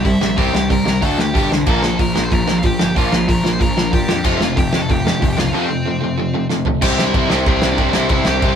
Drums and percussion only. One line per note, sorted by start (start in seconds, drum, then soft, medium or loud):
0.05 kick loud
0.05 open hi-hat medium
0.21 snare loud
0.38 kick loud
0.38 open hi-hat medium
0.55 snare loud
0.70 kick loud
0.70 open hi-hat medium
0.87 snare loud
1.02 kick loud
1.02 open hi-hat medium
1.19 snare loud
1.35 kick loud
1.35 open hi-hat medium
1.52 snare loud
1.67 kick loud
1.67 crash medium
1.83 snare loud
1.99 kick loud
1.99 open hi-hat medium
2.16 snare loud
2.31 kick loud
2.31 open hi-hat medium
2.48 snare loud
2.63 kick loud
2.63 open hi-hat medium
2.80 snare loud
2.96 kick loud
2.96 open hi-hat medium
3.12 snare loud
3.29 kick loud
3.29 open hi-hat medium
3.45 snare loud
3.61 kick loud
3.61 open hi-hat medium
3.78 snare loud
3.93 kick loud
3.93 open hi-hat medium
4.09 snare loud
4.24 kick loud
4.24 crash medium
4.41 snare loud
4.57 kick loud
4.57 open hi-hat medium
4.73 snare loud
4.90 kick loud
4.90 open hi-hat medium
5.07 snare loud
5.22 kick loud
5.22 open hi-hat medium
5.38 snare loud
6.50 snare medium
6.65 floor tom medium
6.82 kick loud
6.82 crash loud
6.82 crash medium
6.99 snare loud
7.14 kick loud
7.14 crash medium
7.30 snare loud
7.46 kick loud
7.46 crash medium
7.62 snare loud
7.78 kick loud
7.78 crash medium
7.93 snare loud
8.09 kick loud
8.09 crash medium
8.25 snare loud
8.42 kick loud
8.42 crash medium